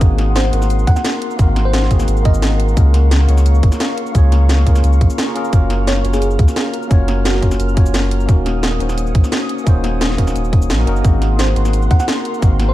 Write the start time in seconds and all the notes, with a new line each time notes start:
Already playing: F#5
0.00 G#1 A#3 C4 D#4 F#4 A#4 C6, kick, closed hi-hat, shaker
0.04 G#4
0.18 snare, closed hi-hat
0.36 C5, snare, closed hi-hat, shaker
0.45 snare
0.52 G#1 A#3 C4 D#4 F#4 A#4, closed hi-hat, shaker
0.62 snare, shaker
0.70 closed hi-hat, shaker
0.79 shaker
0.87 D#2 F#5, kick, closed hi-hat
0.96 F#5, snare, shaker
1.05 snare, closed hi-hat, shaker
1.22 closed hi-hat
1.31 shaker
1.36 G#1 A#3 C4 D#4, kick, closed hi-hat, shaker
1.41 F#4 A#4
1.56 snare, closed hi-hat
1.65 C5
1.74 snare, closed hi-hat, shaker
1.82 snare
1.89 G#1 A#3 C4 D#4 F#4 G#4, kick, closed hi-hat, shaker
2.00 snare, shaker
2.08 G#1, closed hi-hat, shaker
2.17 shaker
2.23 A#3 C4 D#4 D#5, kick, closed hi-hat
2.27 F#4 A#4
2.34 shaker
2.42 snare, closed hi-hat, shaker
2.60 closed hi-hat
2.69 shaker
2.74 C#2 A#3 C#4 F4 F5 C#6, kick, closed hi-hat, shaker
2.78 G#4 A#4
2.94 snare, closed hi-hat
3.11 snare, closed hi-hat, shaker
3.20 snare
3.27 C#2 A#3 C#4 F4 G#4 C#5, closed hi-hat, shaker
3.38 snare, shaker
3.46 closed hi-hat, shaker
3.55 shaker
3.63 G#1, kick, closed hi-hat
3.72 snare, shaker
3.80 snare, closed hi-hat, shaker
3.98 closed hi-hat
4.07 shaker
4.12 C#2 A#3 C#4 F4, kick, closed hi-hat, shaker
4.16 G#4 C#5
4.32 snare, closed hi-hat, shaker
4.49 snare, closed hi-hat, shaker
4.58 snare
4.65 C#2 A#3 C#4 F4 G#4 A#4, kick, closed hi-hat, shaker
4.76 snare, shaker
4.84 C#2, closed hi-hat, shaker
4.93 shaker
5.01 A#1, kick, closed hi-hat
5.10 shaker
5.18 snare, closed hi-hat, shaker
5.26 A#3 C#4 F4 G#4 A#4
5.34 A#3 C#4 F4 G#4 A#4, closed hi-hat
5.45 shaker
5.50 F#1 A#3 C#4 F4 F6, kick, closed hi-hat, shaker
5.54 F#4 A#4
5.70 snare, closed hi-hat
5.87 C#5, snare, closed hi-hat, shaker
5.96 snare
6.03 F#1 A#3 C#4 F4 F#4 C#5, closed hi-hat, shaker
6.14 G#4, snare, shaker
6.22 closed hi-hat, shaker
6.31 shaker
6.39 C#2, kick, closed hi-hat
6.48 snare, shaker
6.56 snare, closed hi-hat, shaker
6.74 closed hi-hat
6.83 shaker
6.88 F#1 A#3 C#4 F4, kick, closed hi-hat, shaker
6.92 F#4 C#5
7.08 snare, closed hi-hat
7.25 F#4, snare, closed hi-hat, shaker
7.34 snare
7.41 F#1 A#3 C#4 F4 F#4 A#4, kick, closed hi-hat, shaker
7.51 snare, shaker
7.60 F#1, closed hi-hat, shaker
7.69 shaker
7.74 A#3 C#4 F4, kick, closed hi-hat
7.78 F#4 C#5
7.86 shaker
7.94 snare, closed hi-hat, shaker
8.11 closed hi-hat
8.20 shaker
8.26 D#1 A#3 C#4 D#4 D#6, kick, closed hi-hat, shaker
8.30 F#4 A#4
8.46 snare, closed hi-hat
8.63 snare, closed hi-hat, shaker
8.72 snare
8.79 D#1 A#3 C#4 D#4 F#4 C5, closed hi-hat, shaker
8.89 snare, shaker
8.98 closed hi-hat, shaker
9.07 shaker
9.15 A#1, kick, closed hi-hat
9.24 snare, shaker
9.32 snare, closed hi-hat, shaker
9.49 closed hi-hat
9.58 shaker
9.64 D#1 A#3 C#4 D#4, kick, closed hi-hat, shaker
9.68 F#4 C5
9.84 snare, closed hi-hat
10.01 snare, closed hi-hat, shaker
10.10 snare
10.17 D#1 A#3 C#4 D#4 F#4 A#4, kick, closed hi-hat, shaker
10.27 snare, shaker
10.36 D#1, closed hi-hat, shaker
10.45 shaker
10.53 kick, closed hi-hat
10.62 shaker
10.70 A#1, snare, closed hi-hat, shaker
10.78 A#3 C#4 D#4 F#4 A#4
10.86 F#1 A#3 C#4 D#4 F#4 A#4, closed hi-hat
10.96 shaker
11.02 G#1 A#3 C4 D#4 A#4 F#5 C6, kick, closed hi-hat, shaker
11.06 F#4 G#4
11.22 snare, closed hi-hat
11.39 C5, snare, closed hi-hat, shaker
11.48 snare
11.55 G#1 A#3 C4 D#4 F#4 A#4, closed hi-hat, shaker
11.65 snare, shaker
11.73 closed hi-hat, shaker
11.82 shaker
11.91 D#2 F#5, kick, closed hi-hat
12.00 F#5, snare, shaker
12.08 snare, closed hi-hat, shaker
12.25 closed hi-hat
12.34 shaker
12.40 G#1 A#3 C4 D#4, kick, closed hi-hat, shaker
12.44 F#4 A#4
12.60 snare, closed hi-hat
12.69 C5